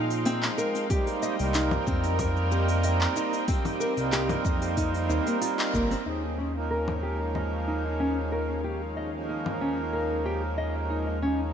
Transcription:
Already playing: analog synth bass A#2, harmonium F3 G#3 C4 D#4, synth drone G#3 D#4 F5 G5
0.10 open hi-hat, cabasa
0.25 nylon-string guitar C4, open hi-hat, cabasa
0.43 clap, open hi-hat, cabasa
0.58 nylon-string guitar A#4, cabasa
0.75 open hi-hat, cabasa
0.89 harmonium G3 A#3 C4 D#4 G4, synth drone C4 A#4 D#5, nylon-string guitar G4, kick, open hi-hat, cabasa
1.07 open hi-hat, cabasa
1.23 nylon-string guitar D#5, cabasa
1.38 analog synth bass C2, harmonium G3 A#3 C4 D#4, open hi-hat, cabasa
1.42 harmonium A#4
1.54 nylon-string guitar D#4, clap, open hi-hat, cabasa
1.71 low conga, cabasa
1.87 analog synth bass F2, nylon-string guitar C4, kick, cabasa
2.04 open hi-hat, cabasa
2.19 nylon-string guitar A#4, kick, open hi-hat, low conga, cabasa
2.37 cabasa
2.52 nylon-string guitar G4, cabasa
2.68 open hi-hat, cabasa
2.83 nylon-string guitar D#5, open hi-hat, cabasa
3.01 clap, cabasa
3.16 nylon-string guitar D#4, cabasa
3.33 open hi-hat, cabasa
3.47 harmonium G3 A#3 C4 G4, nylon-string guitar C4, synth drone C5, kick, open hi-hat, cabasa
3.65 open hi-hat, low conga, cabasa
3.80 nylon-string guitar A#4, cabasa
3.96 analog synth bass C2, harmonium G3 A#3 C4 D#4 A#4, open hi-hat, cabasa
4.12 nylon-string guitar G4, clap, open hi-hat, cabasa
4.29 open hi-hat, low conga, cabasa
4.45 analog synth bass F2, nylon-string guitar D#5, kick, cabasa
4.62 open hi-hat, cabasa
4.77 nylon-string guitar D#4, kick, open hi-hat, cabasa
4.94 open hi-hat, cabasa
5.09 analog synth bass D#2, nylon-string guitar D#4, cabasa
5.26 nylon-string guitar A#3, open hi-hat, cabasa
5.41 nylon-string guitar F4, open hi-hat, cabasa
5.59 clap, open hi-hat, cabasa
5.74 analog synth bass G1, nylon-string guitar A#3, kick, cabasa
5.91 nylon-string guitar C4, open hi-hat, cabasa
6.06 analog synth bass D#2, synth drone G#3 D#4 C#5 F5, harmonium A#3 C#4 D#4 G#4, nylon-string guitar D#4
6.38 nylon-string guitar C#4
6.54 harmonium F3 A#3 C#4 D#4 A#4
6.71 nylon-string guitar A#4
6.88 low conga
7.03 nylon-string guitar G4
7.35 nylon-string guitar D#5, low conga
7.67 nylon-string guitar D#4
8.00 nylon-string guitar C#4
8.32 nylon-string guitar A#4
8.64 harmonium F3 G#3 A#3 C#4 D#4, nylon-string guitar G4
8.97 nylon-string guitar D#5
9.12 harmonium F3 A#3 C#4 D#4 A#4
9.29 nylon-string guitar D#4
9.46 low conga
9.61 nylon-string guitar C#4
9.93 nylon-string guitar A#4
10.25 nylon-string guitar G4
10.58 nylon-string guitar D#5
10.90 nylon-string guitar D#4
11.21 harmonium F3 G#3 A#3 C#4 D#4, nylon-string guitar C#4, synth drone D#5

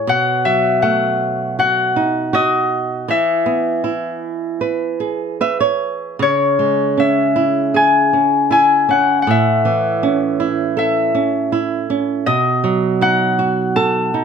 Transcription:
Already playing: harp C#5
0.07 nylon-string guitar B2, harp F#5
0.45 nylon-string guitar F#3, harp E5
0.82 nylon-string guitar A3, harp F#5
1.59 nylon-string guitar F#4, harp F#5
1.96 nylon-string guitar D#4
2.33 nylon-string guitar F#4, harp D#5
3.08 nylon-string guitar E3, harp E5
3.46 nylon-string guitar B3
3.84 nylon-string guitar E4
4.61 nylon-string guitar B4
5.00 nylon-string guitar G#4
5.41 nylon-string guitar B4 E5
5.60 nylon-string guitar C#5
6.19 nylon-string guitar C#3, harp C#5
6.59 nylon-string guitar G#3
6.97 nylon-string guitar C#4, harp E5
7.36 nylon-string guitar E4
7.74 nylon-string guitar G#4, harp G#5
8.13 nylon-string guitar C#4
8.51 nylon-string guitar E4, harp G#5
8.89 nylon-string guitar C#4, harp F#5
9.22 harp F#5
9.27 nylon-string guitar A2, harp E5
9.65 nylon-string guitar E3
10.03 nylon-string guitar C#4
10.40 nylon-string guitar E4
10.77 nylon-string guitar A4, harp E5
11.15 nylon-string guitar C#4
11.52 nylon-string guitar E4
11.90 nylon-string guitar C#4
12.26 nylon-string guitar B2, harp D#5
12.64 nylon-string guitar F#3
13.01 nylon-string guitar D#4, harp F#5
13.39 nylon-string guitar F#4
13.76 nylon-string guitar A4, harp A5
14.14 nylon-string guitar D#4

